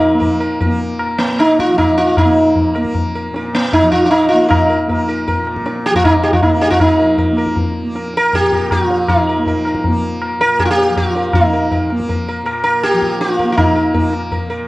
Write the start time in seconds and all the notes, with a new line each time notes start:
Already playing: A#2 F3 A#3 D#4
0.01 A#4
0.14 A#3
0.20 A#4, tabla tin, tabla ge
0.40 A#4, tabla na
0.61 A#4, tabla tin, tabla ge
0.66 A#3
1.00 tabla na
1.19 A#2 A#3
1.39 D#4, tabla na
1.59 F4, tabla ke
1.72 F3
1.78 D#4, tabla na, tabla ge
1.98 F4, tabla te
2.17 D#4, tabla na, tabla ge
2.25 A#3
2.56 tabla tin, tabla ge
2.75 A#3 A#4, tabla na
2.85 tabla ke
2.95 tabla tin, tabla ge
3.15 A#4
3.31 A#2, tabla te
3.36 A#4
3.54 A#3, tabla te
3.73 D#4, tabla na, tabla ge
3.82 F3
3.92 F4, tabla ge
4.06 F4
4.11 D#4, tabla na
4.29 F4
4.34 A#3
4.49 D#4, tabla na, tabla ge
4.70 A#4
4.87 A#3 A#4, tabla tin, tabla ge
5.08 A#4, tabla na
5.28 A#4, tabla tin, tabla ge
5.39 A#2
5.47 tabla na
5.56 tabla ke
5.66 A#4, tabla te
5.86 G4, tabla te
5.90 F3
5.95 F4, tabla tin, tabla ge
6.04 D#4, tabla na, tabla ge
6.23 G4, tabla te
6.33 F4, tabla tin, tabla ge
6.42 A#3 D#4, tabla na, tabla ge
6.61 G4, tabla te
6.70 F4, tabla tin, tabla ge
6.80 F3 D#4, tabla na, tabla ge
6.99 A#4
7.18 A#4, tabla tin, tabla ge
7.32 A#3
7.37 A#4, tabla na
7.46 tabla ke
7.56 tabla tin, tabla ge
7.83 A#3
7.95 A#4, tabla te
8.13 A#4, tabla te
8.33 A#2 G4, tabla na, tabla ge
8.52 A#4, tabla ge
8.71 F4, tabla na, tabla ge
8.87 F3, tabla te
9.08 D#4, tabla na, tabla ge
9.29 A#4
9.38 A#3
9.46 A#4, tabla tin, tabla ge
9.65 A#4, tabla na
9.75 tabla ke
9.84 A#3, tabla tin, tabla ge
10.22 tabla na
10.39 A#2 A#4, tabla na
10.59 G4, tabla na, tabla ge
10.65 F4
10.71 G4
10.78 tabla te
10.90 F3
10.97 F4, tabla na, tabla ge
11.15 A#4, tabla te
11.33 D#4, tabla na, tabla ge
11.40 A#3
11.53 A#4
11.71 A#4, tabla tin, tabla ge
11.90 A#3, tabla na
12.00 tabla ke
12.09 A#4, tabla tin, tabla ge
12.28 A#4
12.43 A#2 A#4, tabla na
12.64 A#4, tabla na
12.83 G4, tabla na
12.93 F3
13.02 tabla ke
13.21 F4, tabla te
13.30 tabla te
13.39 A#4, tabla ke
13.44 A#3
13.48 F4, tabla te
13.57 D#4, tabla na, tabla ge
13.75 A#4
13.94 A#3 A#4, tabla tin, tabla ge
14.13 tabla na
14.31 A#4, tabla tin, tabla ge
14.43 A#2
14.50 A#4